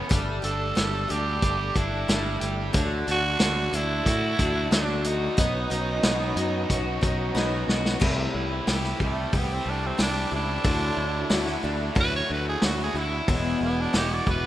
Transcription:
Already playing: overdriven electric guitar A3 B3 C#4, steel-string acoustic guitar C#4 E4
0.09 picked electric bass G1, steel-string acoustic guitar G3 A3 D4 G4, tonewheel organ A3 D4 G4 A4, kick, closed hi-hat
0.42 picked electric bass G1, steel-string acoustic guitar A3 D4 G4, tenor saxophone A4, closed hi-hat
0.75 picked electric bass G1, steel-string acoustic guitar G3 A3 D4 G4, snare, closed hi-hat
1.08 picked electric bass D2, steel-string acoustic guitar A3 D4 G4, tenor saxophone G4, closed hi-hat
1.42 picked electric bass G1, overdriven electric guitar G4, kick, closed hi-hat
1.75 picked electric bass G1, steel-string acoustic guitar A3 D4 G4, tenor saxophone E4, kick, closed hi-hat
2.08 picked electric bass G1, steel-string acoustic guitar G3 A3 D4 G4, snare, closed hi-hat
2.40 picked electric bass G1, overdriven electric guitar G4, closed hi-hat
2.73 picked electric bass D2, steel-string acoustic guitar D3 F#3 A3 D4 F#4, tonewheel organ A3 F#4 A4 D5, kick, closed hi-hat
3.07 picked electric bass D2, steel-string acoustic guitar A3 D4 F#4, tenor saxophone F#4, closed hi-hat
3.39 picked electric bass D2, overdriven electric guitar D3, steel-string acoustic guitar F#3 A3 D4 F#4, snare, closed hi-hat
3.73 picked electric bass D2, steel-string acoustic guitar A3 D4 F#4, tenor saxophone E4, closed hi-hat
4.06 picked electric bass A2, overdriven electric guitar F#4, kick, closed hi-hat
4.39 picked electric bass D2, steel-string acoustic guitar A3 D4 F#4, kick, closed hi-hat
4.71 picked electric bass D2, overdriven electric guitar D3, steel-string acoustic guitar F#3 A3 F#4, tenor saxophone D4, snare, closed hi-hat
5.04 tenor saxophone D#4, overdriven electric guitar F#4, closed hi-hat
5.37 picked electric bass B1, steel-string acoustic guitar B3 D#4 F#4 C#5, tonewheel organ B3 C#4 D#4 F#4, kick, closed hi-hat
5.70 picked electric bass B1, steel-string acoustic guitar D#4 F#4 C#5, closed hi-hat
6.03 picked electric bass B1, steel-string acoustic guitar B3 D#4 F#4 C#5, snare, closed hi-hat
6.36 picked electric bass F#2, steel-string acoustic guitar D#4 F#4 C#5, closed hi-hat
6.69 picked electric bass B1, overdriven electric guitar F#4, kick, closed hi-hat
7.01 picked electric bass B1, steel-string acoustic guitar D#4 F#4 C#5, kick, closed hi-hat
7.35 picked electric bass B1, steel-string acoustic guitar B3 D#4 F#4 C#5, snare
7.68 picked electric bass B1, overdriven electric guitar F#4, snare
7.86 snare
8.00 picked electric bass C2, steel-string acoustic guitar C3 E3 G3 A3 E4 G4, tonewheel organ A3 C4 E4 G4, kick, crash
8.34 picked electric bass C2, overdriven electric guitar E4
8.67 picked electric bass C2, steel-string acoustic guitar G3 A3 E4 G4, snare, open hi-hat
8.84 snare
9.00 picked electric bass C2, steel-string acoustic guitar G3 A3 E4 G4, kick
9.04 tenor saxophone A3
9.33 picked electric bass C2, steel-string acoustic guitar G3 A3 E4 G4, kick, open hi-hat
9.38 tenor saxophone B3
9.53 tenor saxophone C4
9.65 picked electric bass C2, overdriven electric guitar A3
9.70 tenor saxophone D4
9.86 tenor saxophone C4
9.98 picked electric bass C2, steel-string acoustic guitar G3 A3 E4 G4, snare, open hi-hat
10.02 tenor saxophone D4
10.31 picked electric bass C#2, steel-string acoustic guitar G3 A3 E4 G4
10.35 tenor saxophone D4
10.64 picked electric bass D2, steel-string acoustic guitar D3 F#3 A3 D4 E4, tonewheel organ A3 D4 E4 F#4, kick, open hi-hat
10.97 picked electric bass D2, overdriven electric guitar E4
11.30 picked electric bass D2, steel-string acoustic guitar F#3 A3 D4 E4, overdriven electric guitar F#4, snare, open hi-hat
11.47 snare
11.63 picked electric bass D2, steel-string acoustic guitar A3 D4 E4
11.95 picked electric bass D2, steel-string acoustic guitar F#3 A3 D4 E4, overdriven electric guitar F#4, kick, open hi-hat
12.00 tenor saxophone B4
12.16 tenor saxophone C#5
12.29 picked electric bass D2, overdriven electric guitar A3
12.33 tenor saxophone B4
12.49 tenor saxophone G#4
12.62 picked electric bass D2, steel-string acoustic guitar F#3 A3 D4 E4, overdriven electric guitar F#4, snare, open hi-hat
12.66 tenor saxophone F#4
12.83 tenor saxophone G#4
12.94 picked electric bass D2, steel-string acoustic guitar A3 D4 E4, tenor saxophone E4
13.28 picked electric bass E1, steel-string acoustic guitar E2 B2 F#3 G#3 B3 E4, tonewheel organ G#3 B3 E4 F#4, kick, open hi-hat
13.61 picked electric bass E1, tenor saxophone B3, overdriven electric guitar E4
13.81 tenor saxophone D4
13.93 picked electric bass E1, steel-string acoustic guitar F#3 G#3 B3 E4, overdriven electric guitar F#4, tenor saxophone G4, snare, open hi-hat
14.14 tenor saxophone D5
14.27 picked electric bass E1, steel-string acoustic guitar F#3 G#3 B3 E4, kick
14.31 tenor saxophone B4

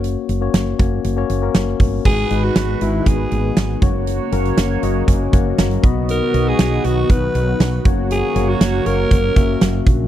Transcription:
Already playing: fretless electric bass F#1, tine electric piano A#3 C#4 F#4 C#5
0.04 closed hi-hat
0.29 fretless electric bass F#1, closed hi-hat
0.41 tine electric piano A#3 C#4 F#4 C#5
0.54 fretless electric bass F#1, snare, closed hi-hat
0.79 fretless electric bass F#1, tine electric piano A#3 C#4 F#4 C#5, kick, closed hi-hat
1.04 fretless electric bass F#1, closed hi-hat
1.17 tine electric piano A#3 C#4 F#4 C#5
1.29 fretless electric bass F#1, closed hi-hat
1.42 tine electric piano A#3 C#4 F#4 A#4
1.55 fretless electric bass F#1, snare, closed hi-hat
1.80 fretless electric bass G1, kick, open hi-hat
2.05 fretless electric bass G#1, tine electric piano G#2 G#3 D#4 F#4 B4, analog synth pad D#3 G#3 B3 F#4, horn section G#3 F#4 B4, alto saxophone G#4, kick, crash
2.30 fretless electric bass G#1, tine electric piano G#3 D#4 F#4 B4, closed hi-hat
2.44 alto saxophone F#4
2.56 fretless electric bass G#1, snare, closed hi-hat
2.81 fretless electric bass G#1, tine electric piano G#3 D#4 F#4 B4, alto saxophone E4, closed hi-hat
3.06 fretless electric bass G#1, alto saxophone G#4, kick, closed hi-hat
3.31 fretless electric bass G#1, closed hi-hat
3.57 fretless electric bass G#1, snare, closed hi-hat
3.81 fretless electric bass F#1, analog synth pad C#3 F#3 A#3, tine electric piano A#3 C#4 F#4 C#5, horn section A#3 F#4 C#5, kick, closed hi-hat
4.07 closed hi-hat
4.32 fretless electric bass F#1, tine electric piano A#3 C#4 F#4 A#4, closed hi-hat
4.45 closed hi-hat
4.57 fretless electric bass F#1, snare, closed hi-hat
4.82 fretless electric bass F#1, tine electric piano A#3 C#4 F#4 D#5 F#5, closed hi-hat
5.08 fretless electric bass F#1, tine electric piano G#5, kick, closed hi-hat
5.33 fretless electric bass F#1, tine electric piano A#3 C#4 F#4 C#5 F#5, kick, closed hi-hat
5.58 fretless electric bass F#1, tine electric piano A#5, snare, closed hi-hat
5.71 closed hi-hat
5.83 fretless electric bass B1, tine electric piano B2 B3 D#4 F#4 D#5 B5, analog synth pad D#3 B3 F#4, horn section B3 F#4 D#5, kick, closed hi-hat
6.09 alto saxophone A#4, closed hi-hat
6.34 fretless electric bass B1, tine electric piano B3 D#4 F#4 D#5, closed hi-hat
6.48 alto saxophone G#4
6.59 fretless electric bass B1, snare, closed hi-hat
6.84 fretless electric bass B1, tine electric piano B3 D#4 F#4 D#5, alto saxophone F#4, closed hi-hat
7.10 fretless electric bass B1, alto saxophone B4, kick, closed hi-hat
7.35 fretless electric bass B1, closed hi-hat
7.60 fretless electric bass B1, snare, closed hi-hat
7.85 fretless electric bass F#1, analog synth pad C#3 A#3, tine electric piano A#3 C#4 F#4 C#5, horn section A#3 F#4 C#5, kick, closed hi-hat
8.11 alto saxophone G#4, closed hi-hat
8.35 fretless electric bass F#1, tine electric piano A#3 C#4 F#4 C#5, closed hi-hat
8.49 alto saxophone F#4
8.61 fretless electric bass F#1, snare, closed hi-hat
8.85 fretless electric bass F#1, tine electric piano A#3 C#4 F#4 C#5, alto saxophone A#4, closed hi-hat
9.11 fretless electric bass F#1, kick, closed hi-hat
9.36 fretless electric bass F#1, tine electric piano A#3 C#4 F#4 E5, kick, closed hi-hat
9.61 fretless electric bass F#1, snare, closed hi-hat
9.87 fretless electric bass A#1, kick, closed hi-hat

